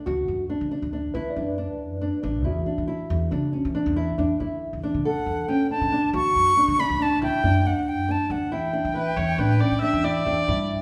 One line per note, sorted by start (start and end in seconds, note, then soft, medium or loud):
0.06 0.25 D2 medium
0.06 0.44 F#4 medium
0.28 0.47 F#2 medium
0.50 0.68 D4 medium
0.61 0.70 D3 medium
0.71 0.90 D4 medium
0.82 1.10 D2 medium
0.93 1.12 D4 medium
1.14 1.24 D2 medium
1.14 1.34 E4 medium
1.14 2.39 B4 medium
1.30 2.53 D5 soft
1.36 1.69 F#2 medium
1.36 1.55 D4 medium
1.58 1.95 D4 medium
1.69 1.91 D2 medium
1.91 2.09 F#2 medium
2.01 2.20 D4 medium
2.23 2.45 A1 medium
2.23 2.42 D4 medium
2.44 2.63 E2 medium
2.44 2.63 E4 medium
2.44 3.71 F#4 soft
2.66 2.85 D4 medium
2.78 2.96 E3 medium
2.88 3.25 E4 medium
3.10 3.28 E2 loud
3.31 3.50 C#3 medium
3.31 3.50 D4 medium
3.53 3.72 C#4 medium
3.65 3.74 E3 medium
3.75 3.93 D4 medium
3.86 4.14 E2 medium
3.96 4.15 E4 medium
4.18 4.28 E2 medium
4.18 4.37 D4 medium
4.40 4.75 D3 medium
4.40 4.77 E4 medium
4.73 4.96 E2 medium
4.83 5.02 D4 medium
4.94 5.13 D3 medium
5.05 5.43 A4 medium
5.05 5.50 F#5 medium
5.26 5.48 E2 medium
5.48 5.67 D2 medium
5.48 5.67 C#4 medium
5.48 5.70 G5 medium
5.71 5.89 D4 medium
5.71 6.11 A5 loud
5.81 6.00 D3 medium
5.92 6.11 D4 medium
6.13 6.32 D2 loud
6.13 6.51 F#4 medium
6.13 6.81 C#6 loud
6.36 6.54 F#2 medium
6.57 6.76 D4 medium
6.68 6.77 D3 medium
6.79 6.97 D4 medium
6.79 7.04 B5 loud
6.90 7.17 D2 medium
7.00 7.19 D4 medium
7.00 7.22 A5 medium
7.22 7.31 D2 medium
7.22 7.41 E4 medium
7.22 7.68 G5 loud
7.43 7.76 F#2 medium
7.43 7.62 D4 medium
7.65 8.03 D4 medium
7.65 7.90 F#5 medium
7.76 7.98 D2 medium
7.88 8.13 G5 medium
7.98 8.16 F#2 medium
8.09 8.27 D4 medium
8.09 8.33 A5 medium
8.30 8.51 D2 medium
8.30 8.49 D4 medium
8.30 8.54 F#5 medium
8.51 8.70 E2 medium
8.51 8.71 E4 medium
8.51 10.82 G5 medium
8.73 8.92 D4 medium
8.85 9.03 E3 medium
8.94 9.33 E4 medium
8.94 9.18 B4 medium
9.16 9.35 E2 medium
9.16 9.40 C#5 medium
9.38 9.57 A2 medium
9.38 9.58 D4 medium
9.38 9.62 B4 medium
9.60 9.79 C#4 medium
9.60 9.81 D5 loud
9.71 9.81 E3 medium
9.81 10.01 D4 medium
9.81 10.06 E5 loud
9.93 10.21 E2 medium
10.04 10.23 E4 medium
10.04 10.82 D5 medium
10.26 10.35 E2 medium
10.26 10.45 D4 medium
10.48 10.82 G2 medium
10.48 10.82 E4 medium